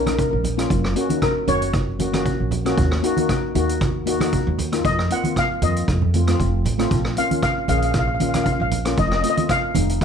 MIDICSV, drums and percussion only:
0, 0, Header, 1, 2, 480
1, 0, Start_track
1, 0, Key_signature, -5, "minor"
1, 0, Tempo, 517241
1, 657, Time_signature, 4, 2, 24, 8
1, 9323, End_track
2, 0, Start_track
2, 0, Title_t, "Drums"
2, 60, Note_on_c, 9, 63, 57
2, 62, Note_on_c, 9, 37, 73
2, 62, Note_on_c, 9, 42, 55
2, 153, Note_off_c, 9, 63, 0
2, 155, Note_off_c, 9, 37, 0
2, 155, Note_off_c, 9, 42, 0
2, 172, Note_on_c, 9, 36, 73
2, 175, Note_on_c, 9, 42, 54
2, 265, Note_off_c, 9, 36, 0
2, 268, Note_off_c, 9, 42, 0
2, 408, Note_on_c, 9, 64, 56
2, 412, Note_on_c, 9, 42, 67
2, 501, Note_off_c, 9, 64, 0
2, 505, Note_off_c, 9, 42, 0
2, 545, Note_on_c, 9, 37, 69
2, 545, Note_on_c, 9, 42, 57
2, 638, Note_off_c, 9, 37, 0
2, 638, Note_off_c, 9, 42, 0
2, 652, Note_on_c, 9, 36, 85
2, 654, Note_on_c, 9, 42, 50
2, 745, Note_off_c, 9, 36, 0
2, 746, Note_off_c, 9, 42, 0
2, 783, Note_on_c, 9, 37, 71
2, 876, Note_off_c, 9, 37, 0
2, 889, Note_on_c, 9, 42, 70
2, 982, Note_off_c, 9, 42, 0
2, 1017, Note_on_c, 9, 63, 61
2, 1021, Note_on_c, 9, 42, 56
2, 1110, Note_off_c, 9, 63, 0
2, 1114, Note_off_c, 9, 42, 0
2, 1132, Note_on_c, 9, 36, 75
2, 1133, Note_on_c, 9, 37, 76
2, 1133, Note_on_c, 9, 42, 51
2, 1224, Note_off_c, 9, 36, 0
2, 1226, Note_off_c, 9, 37, 0
2, 1226, Note_off_c, 9, 42, 0
2, 1370, Note_on_c, 9, 63, 55
2, 1370, Note_on_c, 9, 64, 66
2, 1371, Note_on_c, 9, 42, 64
2, 1463, Note_off_c, 9, 63, 0
2, 1463, Note_off_c, 9, 64, 0
2, 1464, Note_off_c, 9, 42, 0
2, 1501, Note_on_c, 9, 42, 50
2, 1594, Note_off_c, 9, 42, 0
2, 1609, Note_on_c, 9, 37, 64
2, 1609, Note_on_c, 9, 42, 47
2, 1611, Note_on_c, 9, 36, 90
2, 1702, Note_off_c, 9, 37, 0
2, 1702, Note_off_c, 9, 42, 0
2, 1703, Note_off_c, 9, 36, 0
2, 1850, Note_on_c, 9, 42, 72
2, 1856, Note_on_c, 9, 63, 60
2, 1943, Note_off_c, 9, 42, 0
2, 1949, Note_off_c, 9, 63, 0
2, 1981, Note_on_c, 9, 63, 62
2, 1982, Note_on_c, 9, 37, 76
2, 1982, Note_on_c, 9, 42, 53
2, 2074, Note_off_c, 9, 63, 0
2, 2075, Note_off_c, 9, 37, 0
2, 2075, Note_off_c, 9, 42, 0
2, 2093, Note_on_c, 9, 36, 68
2, 2094, Note_on_c, 9, 42, 47
2, 2186, Note_off_c, 9, 36, 0
2, 2187, Note_off_c, 9, 42, 0
2, 2330, Note_on_c, 9, 64, 65
2, 2335, Note_on_c, 9, 42, 59
2, 2422, Note_off_c, 9, 64, 0
2, 2428, Note_off_c, 9, 42, 0
2, 2467, Note_on_c, 9, 37, 67
2, 2467, Note_on_c, 9, 42, 50
2, 2560, Note_off_c, 9, 37, 0
2, 2560, Note_off_c, 9, 42, 0
2, 2575, Note_on_c, 9, 36, 96
2, 2577, Note_on_c, 9, 42, 50
2, 2668, Note_off_c, 9, 36, 0
2, 2670, Note_off_c, 9, 42, 0
2, 2705, Note_on_c, 9, 37, 74
2, 2798, Note_off_c, 9, 37, 0
2, 2817, Note_on_c, 9, 42, 70
2, 2910, Note_off_c, 9, 42, 0
2, 2940, Note_on_c, 9, 63, 71
2, 2945, Note_on_c, 9, 42, 55
2, 3033, Note_off_c, 9, 63, 0
2, 3038, Note_off_c, 9, 42, 0
2, 3054, Note_on_c, 9, 37, 73
2, 3054, Note_on_c, 9, 42, 50
2, 3055, Note_on_c, 9, 36, 81
2, 3147, Note_off_c, 9, 36, 0
2, 3147, Note_off_c, 9, 37, 0
2, 3147, Note_off_c, 9, 42, 0
2, 3296, Note_on_c, 9, 42, 69
2, 3297, Note_on_c, 9, 63, 59
2, 3297, Note_on_c, 9, 64, 60
2, 3389, Note_off_c, 9, 42, 0
2, 3390, Note_off_c, 9, 63, 0
2, 3390, Note_off_c, 9, 64, 0
2, 3427, Note_on_c, 9, 42, 60
2, 3520, Note_off_c, 9, 42, 0
2, 3537, Note_on_c, 9, 36, 95
2, 3537, Note_on_c, 9, 37, 64
2, 3537, Note_on_c, 9, 42, 51
2, 3630, Note_off_c, 9, 36, 0
2, 3630, Note_off_c, 9, 37, 0
2, 3630, Note_off_c, 9, 42, 0
2, 3774, Note_on_c, 9, 42, 75
2, 3867, Note_off_c, 9, 42, 0
2, 3902, Note_on_c, 9, 63, 62
2, 3907, Note_on_c, 9, 37, 73
2, 3907, Note_on_c, 9, 42, 56
2, 3995, Note_off_c, 9, 63, 0
2, 3999, Note_off_c, 9, 37, 0
2, 3999, Note_off_c, 9, 42, 0
2, 4015, Note_on_c, 9, 42, 53
2, 4017, Note_on_c, 9, 36, 70
2, 4108, Note_off_c, 9, 42, 0
2, 4109, Note_off_c, 9, 36, 0
2, 4255, Note_on_c, 9, 64, 58
2, 4258, Note_on_c, 9, 42, 68
2, 4348, Note_off_c, 9, 64, 0
2, 4351, Note_off_c, 9, 42, 0
2, 4385, Note_on_c, 9, 37, 64
2, 4385, Note_on_c, 9, 42, 60
2, 4478, Note_off_c, 9, 37, 0
2, 4478, Note_off_c, 9, 42, 0
2, 4497, Note_on_c, 9, 36, 91
2, 4500, Note_on_c, 9, 42, 56
2, 4590, Note_off_c, 9, 36, 0
2, 4592, Note_off_c, 9, 42, 0
2, 4629, Note_on_c, 9, 37, 66
2, 4722, Note_off_c, 9, 37, 0
2, 4737, Note_on_c, 9, 42, 74
2, 4829, Note_off_c, 9, 42, 0
2, 4860, Note_on_c, 9, 63, 62
2, 4867, Note_on_c, 9, 42, 52
2, 4953, Note_off_c, 9, 63, 0
2, 4960, Note_off_c, 9, 42, 0
2, 4977, Note_on_c, 9, 36, 74
2, 4980, Note_on_c, 9, 37, 74
2, 4980, Note_on_c, 9, 42, 57
2, 5070, Note_off_c, 9, 36, 0
2, 5073, Note_off_c, 9, 37, 0
2, 5073, Note_off_c, 9, 42, 0
2, 5214, Note_on_c, 9, 42, 75
2, 5215, Note_on_c, 9, 63, 54
2, 5215, Note_on_c, 9, 64, 58
2, 5307, Note_off_c, 9, 42, 0
2, 5308, Note_off_c, 9, 63, 0
2, 5308, Note_off_c, 9, 64, 0
2, 5350, Note_on_c, 9, 42, 58
2, 5442, Note_off_c, 9, 42, 0
2, 5456, Note_on_c, 9, 36, 91
2, 5458, Note_on_c, 9, 37, 65
2, 5458, Note_on_c, 9, 42, 53
2, 5549, Note_off_c, 9, 36, 0
2, 5551, Note_off_c, 9, 37, 0
2, 5551, Note_off_c, 9, 42, 0
2, 5586, Note_on_c, 9, 64, 56
2, 5678, Note_off_c, 9, 64, 0
2, 5695, Note_on_c, 9, 42, 66
2, 5702, Note_on_c, 9, 63, 53
2, 5788, Note_off_c, 9, 42, 0
2, 5795, Note_off_c, 9, 63, 0
2, 5824, Note_on_c, 9, 37, 77
2, 5824, Note_on_c, 9, 42, 53
2, 5917, Note_off_c, 9, 37, 0
2, 5917, Note_off_c, 9, 42, 0
2, 5936, Note_on_c, 9, 36, 68
2, 5940, Note_on_c, 9, 42, 50
2, 6028, Note_off_c, 9, 36, 0
2, 6032, Note_off_c, 9, 42, 0
2, 6175, Note_on_c, 9, 42, 66
2, 6175, Note_on_c, 9, 64, 58
2, 6268, Note_off_c, 9, 42, 0
2, 6268, Note_off_c, 9, 64, 0
2, 6304, Note_on_c, 9, 37, 69
2, 6304, Note_on_c, 9, 42, 52
2, 6397, Note_off_c, 9, 37, 0
2, 6397, Note_off_c, 9, 42, 0
2, 6413, Note_on_c, 9, 36, 93
2, 6414, Note_on_c, 9, 42, 49
2, 6505, Note_off_c, 9, 36, 0
2, 6507, Note_off_c, 9, 42, 0
2, 6539, Note_on_c, 9, 37, 74
2, 6632, Note_off_c, 9, 37, 0
2, 6651, Note_on_c, 9, 42, 67
2, 6743, Note_off_c, 9, 42, 0
2, 6783, Note_on_c, 9, 63, 67
2, 6784, Note_on_c, 9, 42, 53
2, 6876, Note_off_c, 9, 63, 0
2, 6877, Note_off_c, 9, 42, 0
2, 6891, Note_on_c, 9, 36, 75
2, 6891, Note_on_c, 9, 37, 74
2, 6891, Note_on_c, 9, 42, 53
2, 6984, Note_off_c, 9, 36, 0
2, 6984, Note_off_c, 9, 37, 0
2, 6984, Note_off_c, 9, 42, 0
2, 7129, Note_on_c, 9, 63, 57
2, 7129, Note_on_c, 9, 64, 63
2, 7133, Note_on_c, 9, 42, 67
2, 7222, Note_off_c, 9, 63, 0
2, 7222, Note_off_c, 9, 64, 0
2, 7225, Note_off_c, 9, 42, 0
2, 7259, Note_on_c, 9, 42, 52
2, 7352, Note_off_c, 9, 42, 0
2, 7365, Note_on_c, 9, 37, 64
2, 7365, Note_on_c, 9, 42, 57
2, 7369, Note_on_c, 9, 36, 96
2, 7458, Note_off_c, 9, 37, 0
2, 7458, Note_off_c, 9, 42, 0
2, 7462, Note_off_c, 9, 36, 0
2, 7607, Note_on_c, 9, 63, 57
2, 7610, Note_on_c, 9, 42, 68
2, 7700, Note_off_c, 9, 63, 0
2, 7703, Note_off_c, 9, 42, 0
2, 7738, Note_on_c, 9, 37, 72
2, 7738, Note_on_c, 9, 42, 53
2, 7740, Note_on_c, 9, 63, 65
2, 7831, Note_off_c, 9, 37, 0
2, 7831, Note_off_c, 9, 42, 0
2, 7833, Note_off_c, 9, 63, 0
2, 7849, Note_on_c, 9, 36, 72
2, 7849, Note_on_c, 9, 42, 58
2, 7942, Note_off_c, 9, 36, 0
2, 7942, Note_off_c, 9, 42, 0
2, 8086, Note_on_c, 9, 42, 71
2, 8088, Note_on_c, 9, 64, 61
2, 8179, Note_off_c, 9, 42, 0
2, 8181, Note_off_c, 9, 64, 0
2, 8216, Note_on_c, 9, 37, 69
2, 8216, Note_on_c, 9, 42, 53
2, 8309, Note_off_c, 9, 37, 0
2, 8309, Note_off_c, 9, 42, 0
2, 8327, Note_on_c, 9, 42, 54
2, 8330, Note_on_c, 9, 36, 91
2, 8420, Note_off_c, 9, 42, 0
2, 8422, Note_off_c, 9, 36, 0
2, 8459, Note_on_c, 9, 37, 73
2, 8551, Note_off_c, 9, 37, 0
2, 8570, Note_on_c, 9, 42, 81
2, 8663, Note_off_c, 9, 42, 0
2, 8698, Note_on_c, 9, 42, 56
2, 8700, Note_on_c, 9, 63, 71
2, 8790, Note_off_c, 9, 42, 0
2, 8793, Note_off_c, 9, 63, 0
2, 8808, Note_on_c, 9, 37, 80
2, 8808, Note_on_c, 9, 42, 60
2, 8809, Note_on_c, 9, 36, 77
2, 8901, Note_off_c, 9, 37, 0
2, 8901, Note_off_c, 9, 42, 0
2, 8902, Note_off_c, 9, 36, 0
2, 9045, Note_on_c, 9, 63, 62
2, 9045, Note_on_c, 9, 64, 74
2, 9048, Note_on_c, 9, 42, 80
2, 9137, Note_off_c, 9, 63, 0
2, 9137, Note_off_c, 9, 64, 0
2, 9141, Note_off_c, 9, 42, 0
2, 9182, Note_on_c, 9, 42, 61
2, 9275, Note_off_c, 9, 42, 0
2, 9291, Note_on_c, 9, 36, 88
2, 9294, Note_on_c, 9, 37, 67
2, 9294, Note_on_c, 9, 42, 52
2, 9323, Note_off_c, 9, 36, 0
2, 9323, Note_off_c, 9, 37, 0
2, 9323, Note_off_c, 9, 42, 0
2, 9323, End_track
0, 0, End_of_file